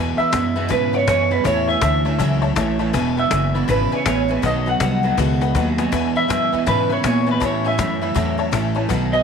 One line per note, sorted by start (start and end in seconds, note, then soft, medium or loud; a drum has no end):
0.00 0.17 E2 medium
0.00 0.19 E2 loud
0.00 0.30 E2 medium
0.00 0.19 B2 medium
0.00 0.30 B2 loud
0.00 0.19 E3 medium
0.00 0.18 G#3 medium
0.00 0.17 B3 medium
0.00 0.17 E4 medium
0.18 0.30 E3 medium
0.18 0.31 G#3 soft
0.18 0.32 B3 soft
0.18 0.32 E4 medium
0.18 0.27 B4 medium
0.18 0.66 E5 loud
0.18 0.27 E5 medium
0.18 0.28 B5 medium
0.18 muted upright bass stroke soft
0.18 cajon slap soft
0.26 cajon slap soft
0.32 0.54 E2 medium
0.32 0.69 F#2 medium
0.32 0.54 B2 medium
0.32 0.56 E3 medium
0.32 0.56 G#3 medium
0.32 0.55 B3 medium
0.32 0.54 E4 medium
0.32 0.47 B4 medium
0.32 0.47 E5 medium
0.32 0.47 F#5 medium
0.32 cajon bass medium
0.32 cajon slap loud
0.56 0.69 E2 medium
0.56 0.69 B2 medium
0.56 0.68 E3 soft
0.56 0.69 G#3 medium
0.56 0.69 B3 medium
0.56 0.69 E4 medium
0.56 0.64 B4 medium
0.56 0.65 E5 medium
0.56 0.65 F#5 medium
0.56 cajon slap soft
0.68 0.93 E2 medium
0.68 1.05 E2 medium
0.68 1.06 G#2 medium
0.68 0.93 B2 medium
0.68 1.05 C#3 medium
0.68 0.93 E3 medium
0.68 0.93 G#3 medium
0.68 0.92 B3 medium
0.68 0.92 E4 medium
0.68 0.84 B4 medium
0.68 0.95 B4 medium
0.68 0.84 E5 medium
0.68 0.84 G#5 medium
0.68 cajon bass loud
0.68 cajon slap soft
0.93 1.06 E3 soft
0.93 1.07 G#3 soft
0.93 1.07 B3 medium
0.93 1.07 E4 medium
0.93 1.02 B4 medium
0.93 1.07 C#5 loud
0.93 1.02 E5 medium
0.93 1.02 F#5 loud
0.93 cajon slap soft
1.01 cajon slap soft
1.07 1.29 E2 medium
1.07 1.44 F#2 medium
1.07 1.29 B2 medium
1.07 1.31 E3 medium
1.07 1.31 G#3 medium
1.07 1.30 B3 medium
1.07 1.29 E4 medium
1.07 1.22 B4 loud
1.07 1.32 C#5 medium
1.07 1.22 E5 medium
1.07 1.22 G#5 loud
1.07 cajon bass medium
1.07 cajon slap loud
1.31 1.43 E2 medium
1.31 1.44 B2 medium
1.31 1.43 E3 soft
1.31 1.44 G#3 soft
1.31 1.45 B3 medium
1.31 1.45 E4 medium
1.31 1.39 B4 medium
1.31 1.44 B4 medium
1.31 1.40 E5 medium
1.31 1.40 F#5 medium
1.31 cajon slap soft
1.44 1.81 E2 medium
1.44 1.68 A2 medium
1.44 1.79 A2 medium
1.44 1.68 E3 medium
1.44 1.80 E3 medium
1.44 1.68 A3 medium
1.44 1.69 C#4 medium
1.44 1.67 E4 medium
1.44 1.58 C#5 medium
1.44 1.68 C#5 loud
1.44 1.59 E5 medium
1.44 1.59 A5 loud
1.44 cajon bass loud
1.44 cajon slap soft
1.67 1.81 A3 soft
1.67 1.82 C#4 medium
1.67 1.82 E4 medium
1.67 1.76 C#5 medium
1.67 1.76 E5 medium
1.67 2.77 E5 medium
1.67 1.76 G#5 medium
1.67 cajon slap soft
1.75 cajon slap soft
1.81 2.18 D2 medium
1.81 2.03 A2 medium
1.81 2.05 E3 medium
1.81 2.03 E3 loud
1.81 2.06 A3 medium
1.81 2.05 C#4 medium
1.81 2.04 E4 medium
1.81 1.96 C#5 medium
1.81 1.96 E5 medium
1.81 1.96 A5 medium
1.81 cajon bass medium
1.81 cajon slap loud
2.05 2.18 A2 medium
2.05 2.18 E3 medium
2.05 2.19 A3 soft
2.05 2.19 C#4 medium
2.05 2.19 E4 medium
2.05 2.14 C#5 medium
2.05 2.14 E5 medium
2.05 2.14 A5 medium
2.18 2.56 C#2 medium
2.18 2.43 A2 medium
2.18 2.54 A2 medium
2.18 2.43 E3 loud
2.18 2.54 F#3 medium
2.18 2.43 A3 loud
2.18 2.42 C#4 loud
2.18 2.41 E4 loud
2.18 2.33 C#5 medium
2.18 2.33 E5 medium
2.18 2.33 A5 medium
2.18 cajon bass loud
2.18 cajon slap soft
2.42 2.55 A3 medium
2.42 2.56 C#4 medium
2.42 2.56 E4 medium
2.42 2.51 C#5 loud
2.42 2.51 E5 loud
2.42 2.51 A5 loud
2.42 cajon slap soft
2.50 cajon slap soft
2.56 2.93 A1 medium
2.56 2.78 A2 medium
2.56 2.80 E3 medium
2.56 2.78 E3 loud
2.56 2.80 A3 medium
2.56 2.79 C#4 medium
2.56 2.78 E4 medium
2.56 2.71 C#5 loud
2.56 2.71 E5 loud
2.56 2.71 A5 loud
2.56 cajon bass medium
2.56 cajon slap loud
2.79 2.92 A2 medium
2.79 2.93 E3 medium
2.79 2.94 A3 medium
2.79 2.94 C#4 medium
2.79 2.93 E4 medium
2.79 2.88 C#5 medium
2.79 2.88 E5 medium
2.79 2.88 A5 medium
2.79 cajon slap soft
2.93 3.30 E1 medium
2.93 3.17 E2 medium
2.93 3.28 E2 medium
2.93 3.17 B2 medium
2.93 3.29 B2 loud
2.93 3.18 E3 loud
2.93 3.18 G#3 medium
2.93 3.17 B3 loud
2.93 3.16 E4 medium
2.93 3.08 B4 loud
2.93 3.08 E5 loud
2.93 3.08 G#5 loud
2.93 cajon bass loud
2.93 cajon slap soft
3.17 3.29 E3 soft
3.17 3.30 G#3 medium
3.17 3.31 B3 soft
3.17 3.31 E4 medium
3.17 3.26 B4 medium
3.17 3.26 E5 medium
3.17 3.71 E5 medium
3.17 3.26 F#5 medium
3.17 cajon slap soft
3.24 cajon slap soft
3.30 3.67 F#1 medium
3.30 3.52 E2 medium
3.30 3.53 B2 loud
3.30 3.54 E3 medium
3.30 3.55 G#3 medium
3.30 3.55 B3 medium
3.30 3.54 E4 medium
3.30 3.45 B4 medium
3.30 3.45 E5 medium
3.30 3.45 G#5 medium
3.30 cajon bass medium
3.30 cajon slap loud
3.54 3.67 E2 medium
3.54 3.67 B2 medium
3.54 3.67 E3 soft
3.54 3.67 G#3 medium
3.54 3.68 B3 medium
3.54 3.68 E4 medium
3.54 3.63 B4 medium
3.54 3.63 E5 medium
3.54 3.63 B5 medium
3.54 cajon slap soft
3.68 3.90 G#1 medium
3.68 3.92 E2 medium
3.68 4.03 E2 medium
3.68 3.92 B2 medium
3.68 4.03 C#3 medium
3.68 3.92 E3 medium
3.68 3.92 G#3 medium
3.68 3.91 B3 medium
3.68 3.90 E4 medium
3.68 3.82 B4 medium
3.68 3.94 B4 medium
3.68 3.82 E5 medium
3.68 3.82 B5 medium
3.68 cajon bass medium
3.68 cajon slap soft
3.92 4.04 E3 soft
3.92 4.05 G#3 medium
3.92 4.05 B3 medium
3.92 4.06 E4 medium
3.92 4.00 B4 loud
3.92 4.07 C#5 loud
3.92 4.01 E5 medium
3.92 4.01 G#5 loud
3.92 muted upright bass stroke soft
3.99 cajon slap soft
4.05 4.42 A1 medium
4.05 4.27 E2 medium
4.05 4.27 B2 loud
4.05 4.29 E3 medium
4.05 4.29 G#3 medium
4.05 4.28 B3 medium
4.05 4.27 E4 medium
4.05 4.20 B4 loud
4.05 4.31 C#5 medium
4.05 4.20 E5 medium
4.05 4.20 G#5 loud
4.05 cajon bass medium
4.05 cajon slap loud
4.28 4.42 E2 medium
4.28 4.42 B2 medium
4.28 4.42 E3 soft
4.28 4.43 G#3 soft
4.28 4.42 B3 medium
4.28 4.43 E4 medium
4.28 4.38 B4 medium
4.28 4.44 B4 medium
4.28 4.38 E5 medium
4.28 4.39 G#5 medium
4.28 cajon slap soft
4.42 4.79 B1 medium
4.42 4.66 B2 medium
4.42 4.77 B2 medium
4.42 4.67 D#3 medium
4.42 4.78 F#3 loud
4.42 4.67 A3 medium
4.42 4.66 B3 medium
4.42 4.65 F#4 medium
4.42 4.57 B4 loud
4.42 4.58 D#5 medium
4.42 4.69 D#5 loud
4.42 4.58 F#5 loud
4.42 cajon bass loud
4.42 cajon slap soft
4.66 4.80 A3 soft
4.66 4.80 B3 medium
4.66 4.80 F#4 medium
4.66 4.75 B4 medium
4.66 4.75 D#5 medium
4.66 4.75 F#5 medium
4.66 5.76 F#5 medium
4.66 cajon slap soft
4.74 cajon slap soft
4.80 5.17 C2 medium
4.80 5.01 B2 medium
4.80 5.04 D#3 medium
4.80 5.02 F#3 loud
4.80 5.04 A3 medium
4.80 5.03 B3 medium
4.80 5.02 F#4 medium
4.80 4.95 B4 medium
4.80 4.95 D#5 medium
4.80 4.95 F#5 medium
4.80 cajon bass medium
4.80 cajon slap loud
5.03 5.16 B2 medium
5.03 5.17 F#3 medium
5.03 5.17 A3 soft
5.03 5.18 B3 soft
5.03 5.17 F#4 medium
5.03 5.12 B4 medium
5.03 5.12 D#5 medium
5.03 5.12 F#5 medium
5.03 cajon slap soft
5.17 5.54 C#2 medium
5.17 5.52 B2 medium
5.17 5.41 B2 medium
5.17 5.41 D#3 medium
5.17 5.52 G#3 loud
5.17 5.41 A3 medium
5.17 5.41 B3 medium
5.17 5.40 F#4 loud
5.17 5.32 B4 medium
5.17 5.32 D#5 medium
5.17 5.32 F#5 loud
5.17 cajon bass loud
5.17 cajon slap medium
5.41 5.54 A3 soft
5.41 5.55 B3 medium
5.41 5.55 F#4 medium
5.41 5.50 B4 loud
5.41 5.50 D#5 medium
5.41 5.50 F#5 loud
5.41 5.54 B5 medium
5.41 cajon slap medium
5.55 5.91 D#2 medium
5.55 5.76 B2 medium
5.55 5.78 D#3 medium
5.55 5.76 F#3 medium
5.55 5.79 A3 medium
5.55 5.78 B3 medium
5.55 5.77 F#4 medium
5.55 5.69 B4 loud
5.55 5.70 D#5 medium
5.55 5.70 F#5 loud
5.55 5.77 G#5 medium
5.55 cajon bass medium
5.55 cajon slap medium
5.78 5.91 B2 medium
5.78 5.91 F#3 medium
5.78 5.92 A3 medium
5.78 5.91 B3 medium
5.78 5.92 F#4 medium
5.78 5.87 B4 medium
5.78 5.87 D#5 medium
5.78 5.91 F#5 medium
5.78 5.87 G#5 loud
5.78 cajon slap medium
5.92 6.15 E2 medium
5.92 6.28 E2 medium
5.92 6.27 E2 medium
5.92 6.16 B2 medium
5.92 6.27 B2 loud
5.92 6.16 E3 medium
5.92 6.16 G#3 medium
5.92 6.15 B3 loud
5.92 6.14 E4 medium
5.92 6.07 B4 loud
5.92 6.07 E5 loud
5.92 6.07 G#5 loud
5.92 cajon bass loud
5.92 cajon slap soft
6.15 6.27 E3 soft
6.15 6.28 G#3 soft
6.15 6.29 B3 medium
6.15 6.29 E4 soft
6.15 6.24 B4 medium
6.15 6.24 E5 medium
6.15 6.68 E5 loud
6.15 6.24 B5 medium
6.15 cajon slap soft
6.23 cajon slap soft
6.28 6.50 E2 medium
6.28 6.51 F#2 medium
6.28 6.51 B2 medium
6.28 6.52 E3 medium
6.28 6.53 G#3 medium
6.28 6.52 B3 medium
6.28 6.51 E4 medium
6.28 6.43 B4 medium
6.28 6.43 E5 medium
6.28 6.44 G#5 medium
6.28 cajon bass medium
6.28 cajon slap loud
6.52 6.66 E2 medium
6.52 6.66 B2 medium
6.52 6.66 E3 soft
6.52 6.66 G#3 medium
6.52 6.66 B3 medium
6.52 6.66 E4 medium
6.52 6.61 B4 medium
6.52 6.61 E5 medium
6.52 6.61 G#5 medium
6.52 muted upright bass stroke soft
6.52 cajon slap soft
6.66 6.90 E2 medium
6.66 7.01 E2 medium
6.66 7.03 G#2 medium
6.66 6.90 B2 medium
6.66 7.02 C#3 medium
6.66 6.90 E3 medium
6.66 6.90 G#3 medium
6.66 6.89 B3 loud
6.66 6.88 E4 loud
6.66 6.81 B4 medium
6.66 6.91 B4 medium
6.66 6.81 E5 medium
6.66 6.81 G#5 medium
6.66 cajon bass loud
6.66 cajon slap soft
6.89 7.02 E3 soft
6.89 7.03 G#3 soft
6.89 7.04 B3 medium
6.89 7.04 E4 medium
6.89 6.98 B4 medium
6.89 7.04 C#5 loud
6.89 6.98 E5 medium
6.89 6.98 B5 loud
6.89 cajon slap soft
6.98 cajon slap soft
7.03 7.25 E2 medium
7.03 7.40 A#2 medium
7.03 7.25 B2 medium
7.03 7.27 E3 medium
7.03 7.27 G#3 medium
7.03 7.26 B3 medium
7.03 7.25 E4 medium
7.03 7.18 B4 medium
7.03 7.27 C#5 medium
7.03 7.18 E5 medium
7.03 7.18 G#5 loud
7.03 cajon bass medium
7.03 cajon slap loud
7.26 7.40 E2 medium
7.26 7.40 B2 medium
7.26 7.39 E3 soft
7.26 7.41 G#3 medium
7.26 7.41 B3 soft
7.26 7.41 E4 medium
7.26 7.35 B4 medium
7.26 7.36 E5 medium
7.26 7.36 G#5 medium
7.26 cajon slap soft
7.31 7.42 B4 medium
7.40 7.64 A2 medium
7.40 7.77 A2 medium
7.40 7.76 A2 medium
7.40 7.64 E3 medium
7.40 7.76 E3 loud
7.40 7.65 A3 medium
7.40 7.64 C#4 medium
7.40 7.63 E4 medium
7.40 7.55 C#5 loud
7.40 7.55 E5 medium
7.40 7.55 A5 loud
7.40 cajon bass loud
7.40 cajon slap soft
7.45 7.65 C#5 medium
7.64 7.78 A3 soft
7.64 7.78 C#4 medium
7.64 7.78 E4 medium
7.64 7.73 C#5 medium
7.64 7.73 E5 medium
7.64 8.74 E5 medium
7.64 7.73 G#5 medium
7.64 cajon slap soft
7.72 cajon slap soft
7.78 8.14 F#2 medium
7.78 7.99 A2 medium
7.78 8.02 E3 medium
7.78 8.00 E3 medium
7.78 8.02 A3 medium
7.78 8.01 C#4 medium
7.78 8.00 E4 medium
7.78 7.92 C#5 medium
7.78 7.93 E5 medium
7.78 7.93 B5 medium
7.78 cajon bass medium
7.78 cajon slap loud
8.01 8.13 A2 medium
8.01 8.14 E3 medium
8.01 8.14 A3 soft
8.01 8.15 C#4 medium
8.01 8.15 E4 medium
8.01 8.10 C#5 medium
8.01 8.11 E5 medium
8.01 8.11 B5 medium
8.01 cajon slap soft
8.15 8.52 E2 medium
8.15 8.38 A2 loud
8.15 8.50 A2 medium
8.15 8.39 E3 loud
8.15 8.50 F#3 medium
8.15 8.39 A3 medium
8.15 8.38 C#4 medium
8.15 8.36 E4 loud
8.15 8.30 C#5 medium
8.15 8.30 E5 medium
8.15 8.30 A5 loud
8.15 cajon bass loud
8.15 cajon slap soft
8.38 8.51 A3 medium
8.38 8.52 E4 medium
8.38 8.47 C#5 loud
8.38 8.47 E5 loud
8.38 8.47 A5 loud
8.38 cajon slap soft
8.46 cajon slap soft
8.51 8.89 A1 medium
8.51 8.74 A2 medium
8.51 8.76 E3 medium
8.51 8.74 E3 loud
8.51 8.75 A3 medium
8.51 8.74 C#4 medium
8.51 8.73 E4 medium
8.51 8.67 C#5 loud
8.51 8.67 E5 loud
8.51 8.67 A5 loud
8.51 cajon bass medium
8.51 cajon slap loud
8.75 8.88 A2 medium
8.75 8.89 E3 medium
8.75 8.89 A3 medium
8.75 8.90 C#4 medium
8.75 8.89 E4 medium
8.75 8.84 C#5 loud
8.75 8.84 E5 medium
8.75 8.84 A5 loud
8.75 cajon slap soft
8.89 9.23 B1 medium
8.89 9.13 B2 medium
8.89 9.23 B2 loud
8.89 9.13 D#3 loud
8.89 9.23 F#3 medium
8.89 9.13 A3 loud
8.89 9.13 B3 loud
8.89 9.12 F#4 loud
8.89 9.03 B4 loud
8.89 9.03 D#5 loud
8.89 9.04 F#5 loud
8.89 cajon bass loud
8.89 cajon slap soft
9.13 9.23 A3 soft
9.13 9.23 B3 medium
9.13 9.23 F#4 medium
9.13 9.22 B4 medium
9.13 9.23 D#5 loud
9.13 9.22 D#5 medium
9.13 9.22 G#5 medium
9.13 cajon slap soft